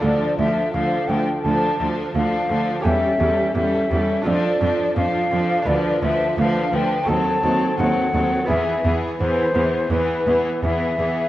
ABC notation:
X:1
M:4/4
L:1/8
Q:1/4=85
K:Dm
V:1 name="Flute"
d e f g a z f2 | e2 e2 d2 f2 | [K:Ephr] d e f g a2 ^f2 | e z c2 B2 e2 |]
V:2 name="Violin section"
A A A A A A A A | A A A A A A A A | [K:Ephr] B B B B A A A A | ^G G G G G G G G |]
V:3 name="Violin section"
D D D D D D D D | ^C C C C D D D D | [K:Ephr] D D D D ^B, B, B, B, | B, B, B, B, B, B, B, B, |]
V:4 name="Viola section" clef=bass
F, F, F, F, F, F, F, F, | G, G, G, G, F, F, F, F, | [K:Ephr] F, F, F, F, ^F, F, F, F, | E, E, E, E, E, E, E, E, |]
V:5 name="Lute"
[DFA]8 | [^CGA]4 [DFA]4 | [K:Ephr] [DFB]4 [^B,^FA]4 | [B,E^G]8 |]
V:6 name="Lute" clef=bass
D,, D,, D,, D,, D,, D,, D,, D,, | E,, E,, E,, E,, F,, F,, F,, F,, | [K:Ephr] D,, D,, D,, D,, ^D,, D,, D,, D,, | E,, E,, E,, E,, E,, E,, E,, E,, |]
V:7 name="Cello section" clef=bass
D,, D,, D,, D,, D,, D,, D,, D,, | E,, E,, E,, E,, F,, F,, F,, F,, | [K:Ephr] D,, D,, D,, D,, ^D,, D,, D,, D,, | E,, E,, E,, E,, E,, E,, E,, E,, |]